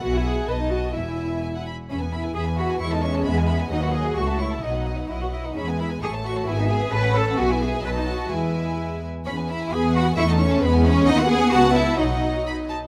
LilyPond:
<<
  \new Staff \with { instrumentName = "Violin section" } { \time 2/4 \key e \major \tempo 4 = 131 fis''4 dis''4 | e''4 gis''16 fis''16 b''8 | b''16 gis''16 b''16 gis''16 b''16 gis''16 b''16 gis''16 | cis'''16 a''16 cis'''16 a''16 b''16 gis''16 b''16 gis''16 |
dis''16 fis''16 dis''16 fis''16 cis'''16 a''16 cis'''16 a''16 | dis''16 fis''16 dis''16 fis''16 dis''16 fis''16 dis''16 fis''16 | b''16 gis''16 b''16 gis''16 cis'''16 a''16 cis'''16 a''16 | gis''16 e''16 gis''16 e''16 a''16 fis''16 a''16 fis''16 |
gis''4 a''4 | gis''4. r8 | b''16 gis''16 b''16 gis''16 b''16 gis''16 b''16 gis''16 | cis'''16 a''16 cis'''16 a''16 b''16 gis''16 b''16 gis''16 |
fis''4 a''4 | fis''4 b''8 a''8 | }
  \new Staff \with { instrumentName = "Violin section" } { \time 2/4 \key e \major <e'' gis''>4 <dis'' a''>4 | <e'' gis''>4. r8 | <gis' e''>16 <b' gis''>16 <gis' e''>16 <b' gis''>16 <gis' e''>16 <b' gis''>16 <gis' e''>16 <b' gis''>16 | <cis'' e''>16 <a' cis''>16 <cis'' e''>16 <a' cis''>16 <gis' e''>16 <b' gis''>16 <gis' e''>16 <b' gis''>16 |
<dis'' fis''>16 <b' dis''>16 <dis'' fis''>16 <b' dis''>16 <e' cis''>16 <a' e''>16 <e' cis''>16 <a' e''>16 | <dis'' fis''>16 <b' dis''>16 <dis'' fis''>16 <b' dis''>16 <dis'' fis''>16 <b' dis''>16 <dis'' fis''>16 <b' dis''>16 | <gis' e''>16 <b' gis''>16 <gis' e''>16 <b' gis''>16 <a' e''>16 cis''16 <a' e''>16 cis''16 | <gis' e''>16 <b' gis''>16 <gis' e''>16 <b' gis''>16 <a' cis''>16 <a' cis''>16 <a' cis''>16 <a' cis''>16 |
<b' e''>4 <b' dis''>4 | <b' e''>4. r8 | cis''16 b'16 e''8 gis''8 fis''8 | e''16 dis''16 cis''8 b'8 cis''8 |
dis''16 fis''16 gis''8 fis''8 e''8 | dis''4. r8 | }
  \new Staff \with { instrumentName = "Cello section" } { \time 2/4 \key e \major b,4 b,4 | e,4. r8 | cis'16 b16 e'8 gis'8 fis'8 | e'16 dis'16 cis'8 b4 |
dis'16 fis'16 gis'8 fis'8 e'8 | dis'4 e'16 fis'16 e'16 dis'16 | cis'16 b16 e'8 gis'8 fis'8 | e'16 dis'16 gis'8 b'8 a'8 |
fis'16 e'16 gis'8 b'16 dis'16 fis'8 | e'4. r8 | cis'16 b16 e'8 gis'8 fis'8 | e'16 dis'16 cis'8 b8 cis'8 |
dis'16 fis'16 gis'8 fis'8 e'8 | dis'4. r8 | }
  \new Staff \with { instrumentName = "Viola section" } { \time 2/4 \key e \major fis'16 e'16 gis'8 b'16 dis'16 fis'8 | e'4. r8 | r4 e4 | gis2 |
fis4 a4 | fis4. r8 | gis4 a4 | b4 cis'4 |
b4 fis4 | gis4. r8 | r4 b4 | a4 gis4 |
b2 | fis4. r8 | }
  \new Staff \with { instrumentName = "Double bass section" } { \clef bass \time 2/4 \key e \major b,,4 b,,4 | e,,4. r8 | e,4 e,4 | e,4 e,4 |
dis,4 cis,4 | b,,4 b,,4 | e,4 a,,4 | gis,,4 a,,4 |
b,,4 b,,4 | e,4. r8 | e,4 e,4 | e,4 e,4 |
dis,4 cis,4 | b,,4. r8 | }
>>